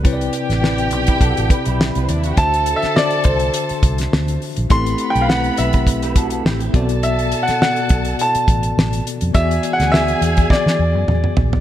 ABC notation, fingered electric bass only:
X:1
M:4/4
L:1/16
Q:"Swing 16ths" 1/4=103
K:Ador
V:1 name="Fingered electric bass" clef=bass
C,,2 z A,,,3 B,,,2 B,,, A,,, z B,,,2 C,, ^D,,2 | D,,3 z3 C,,2 z2 C,,2 D,,2 z _B,,, | A,,,2 z B,,,3 B,,,6 A,,,2 B,,,2- | B,,,3 z3 B,,,2 z2 A,,,2 A,,,2 z =F,, |
E,,2 z D,,3 E,,2 z E, E,, F,, E,, z _B,,,2 |]